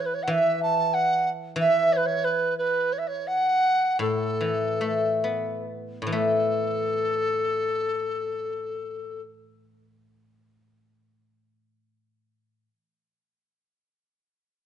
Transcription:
Already playing: guzheng E3
0.00 dizi C#5
0.06 dizi B4
0.14 dizi C#5
0.23 dizi F#5
0.27 guzheng E3, dizi E5
0.63 dizi A5
0.94 dizi F#5
1.56 guzheng E3
1.60 dizi E5
1.93 dizi C#5
1.97 dizi B4
2.06 dizi C#5
2.24 dizi B4
2.58 dizi B4
2.93 dizi C#5
2.98 dizi E5
3.08 dizi C#5
3.27 dizi F#5
3.99 guzheng A2, dizi A4
4.41 guzheng E3
4.81 guzheng A3
5.24 guzheng B3
6.02 guzheng A2
6.07 guzheng E3, dizi A4
6.12 guzheng A3

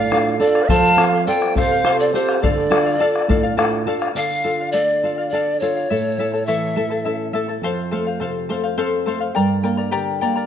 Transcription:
Already playing: nylon-string guitar A2, quena D5, pan flute F5
0.00 charango D5 F5
0.11 nylon-string guitar D4 F4 A4, charango A4 D5 F5, bombo rim
0.39 nylon-string guitar D4 F4 A4, charango A4 D5 F5, quena A4, pan flute D5, bombo rim
0.55 charango D5 F5, bombo rim
0.69 nylon-string guitar F3, charango A4 C5 F5, quena F5, pan flute A5, bombo low
0.97 nylon-string guitar C4 F4 A4, charango A4 C5 F5, bombo rim
1.13 charango C5 F5
1.27 nylon-string guitar C4 F4 A4, charango A4 C5 F5, quena D5, pan flute G5
1.42 bombo rim
1.55 nylon-string guitar C3, charango A4 C5 F5, quena C5, pan flute F5, bombo low
1.71 charango C5 F5
1.84 nylon-string guitar C4 F4 A4, charango A4 C5 F5, bombo rim
1.99 quena A4, pan flute D5
2.14 nylon-string guitar C4 F4 A4, quena G4, charango A4 C5 F5, pan flute C5, bombo rim
2.28 charango C5 F5, bombo rim
2.42 nylon-string guitar D3, charango A4 D5 F5, quena A4, pan flute D5, bombo low
2.58 bombo rim
2.70 nylon-string guitar D4 F4 A4, charango A4 D5 F5, bombo rim
2.86 charango D5 F5
3.00 nylon-string guitar D4 F4 A4, charango A4 D5 F5
3.16 bombo rim
3.28 nylon-string guitar A2, charango A4 D5 F5, bombo low
3.43 charango D5 F5
3.57 nylon-string guitar D4 F4 A4, charango A4 D5 F5, bombo rim
3.73 bombo rim
3.86 nylon-string guitar D4 F4 A4, charango A4 D5 F5
4.01 charango D5 F5, bombo rim
4.15 nylon-string guitar D3, charango A4 D5 F5, pan flute F5
4.44 nylon-string guitar F4, charango A4 D5 F5
4.61 charango D5 F5
4.72 nylon-string guitar A3, charango A4 D5 F5, pan flute D5
5.04 nylon-string guitar F4, charango A4 D5 F5
5.18 charango D5 F5
5.29 nylon-string guitar A4, pan flute D5
5.34 charango A4 D5 F5
5.60 nylon-string guitar F4, charango A4 D5 F5, pan flute C#5
5.76 charango D5 F5
5.90 nylon-string guitar A2, charango E4 A4 E5 A5
6.18 nylon-string guitar A3, charango E4 A4 E5 A5
6.34 charango E4 A4 A5
6.46 nylon-string guitar E3, charango E4 A4 C#5 E5 A5, pan flute E5
6.76 nylon-string guitar A3, charango E4 A4 E5 A5
6.90 charango E4 A4 A5
7.05 nylon-string guitar C#4, charango E4 A4 E5 A5
7.33 nylon-string guitar A3, charango E4 A4 E5 A5
7.49 charango E4 A4 A5
7.62 nylon-string guitar F2, charango A4 C5 F5
7.91 nylon-string guitar A3, charango A4 C5 F5
8.07 charango C5 F5
8.20 nylon-string guitar C3, charango A4 C5 F5
8.49 nylon-string guitar A3, charango A4 C5 F5
8.64 charango C5 F5
8.78 nylon-string guitar C4, charango A4 C5 F5
9.06 nylon-string guitar A3, charango A4 C5 F5
9.20 charango C5 F5
9.35 nylon-string guitar G2, charango A#4 D5 G5 A#5
9.63 nylon-string guitar A#3, charango A#4 D5 G5 A#5
9.77 charango A#4 D5 A#5
9.91 nylon-string guitar D3, charango G4 A#4 D5 G5 A#5
10.21 nylon-string guitar A#3, charango A#4 D5 G5 A#5
10.36 charango A#4 D5 A#5

